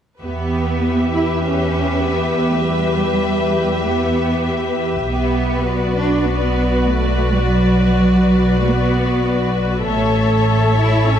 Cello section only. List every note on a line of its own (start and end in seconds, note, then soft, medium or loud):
0.21 1.09 B3 medium
1.13 1.44 E4 medium
1.44 2.03 C#4 medium
2.04 2.49 B3 soft
2.50 2.65 A3 soft
2.65 3.84 G3 soft
3.86 4.77 B3 soft
5.07 5.93 B3 medium
5.97 6.27 D4 medium
6.27 6.87 B3 medium
6.87 7.32 A3 medium
7.32 7.47 G3 soft
7.46 8.65 F#3 medium
8.67 9.58 B3 medium
9.87 10.73 A3 medium
10.77 11.07 E4 medium
11.07 11.20 C#4 medium